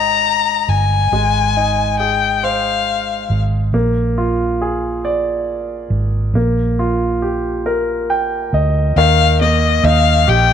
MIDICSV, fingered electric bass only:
0, 0, Header, 1, 2, 480
1, 0, Start_track
1, 0, Tempo, 872093
1, 618, Time_signature, 6, 3, 24, 8
1, 5796, End_track
2, 0, Start_track
2, 0, Title_t, "Fingered electric bass"
2, 0, Program_c, 0, 33
2, 0, Note_on_c, 0, 32, 65
2, 355, Note_off_c, 0, 32, 0
2, 377, Note_on_c, 0, 31, 64
2, 603, Note_off_c, 0, 31, 0
2, 617, Note_on_c, 0, 32, 74
2, 1796, Note_off_c, 0, 32, 0
2, 1815, Note_on_c, 0, 32, 69
2, 2042, Note_off_c, 0, 32, 0
2, 2053, Note_on_c, 0, 34, 74
2, 3234, Note_off_c, 0, 34, 0
2, 3248, Note_on_c, 0, 32, 69
2, 3479, Note_off_c, 0, 32, 0
2, 3488, Note_on_c, 0, 34, 72
2, 4671, Note_off_c, 0, 34, 0
2, 4694, Note_on_c, 0, 38, 59
2, 4921, Note_off_c, 0, 38, 0
2, 4932, Note_on_c, 0, 39, 90
2, 5393, Note_off_c, 0, 39, 0
2, 5413, Note_on_c, 0, 39, 98
2, 5641, Note_off_c, 0, 39, 0
2, 5655, Note_on_c, 0, 34, 78
2, 5796, Note_off_c, 0, 34, 0
2, 5796, End_track
0, 0, End_of_file